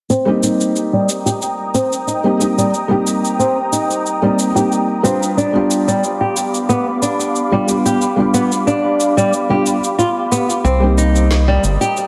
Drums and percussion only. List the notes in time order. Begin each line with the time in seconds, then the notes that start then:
0.10 cabasa
0.43 cabasa
0.61 cabasa
0.76 cabasa
1.09 cabasa
1.27 cabasa
1.42 cabasa
1.75 cabasa
1.93 cabasa
2.08 cabasa
2.41 cabasa
2.59 cabasa
2.74 cabasa
3.07 cabasa
3.25 cabasa
3.40 cabasa
3.73 cabasa
3.91 cabasa
4.06 cabasa
4.39 cabasa
4.57 cabasa
4.72 cabasa
5.05 cabasa
5.23 cabasa
5.38 cabasa
5.71 cabasa
5.88 cabasa
6.04 cabasa
6.37 cabasa
6.54 cabasa
6.70 cabasa
7.03 cabasa
7.20 cabasa
7.36 cabasa
7.68 cabasa
7.86 cabasa
8.01 cabasa
8.34 cabasa
8.52 cabasa
8.68 cabasa
9.00 cabasa
9.18 cabasa
9.33 cabasa
9.66 cabasa
9.84 cabasa
9.99 cabasa
10.32 cabasa
10.50 cabasa
10.65 cabasa
10.98 cabasa
11.16 cabasa
11.31 snare, cabasa
11.64 cabasa
11.82 cabasa
11.97 cabasa